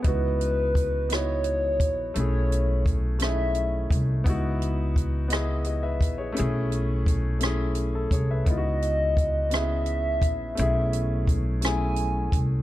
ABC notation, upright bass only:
X:1
M:6/8
L:1/8
Q:3/8=57
K:C#m
V:1 name="Upright bass" clef=bass
C,,4- C,, ^A,,, | B,,,4- B,,, ^B,,, | C,,4- C,, ^A,,, | B,,,4- B,,, ^B,,, |
C,,4- C,, ^A,,, | B,,,4- B,,, ^B,,, |]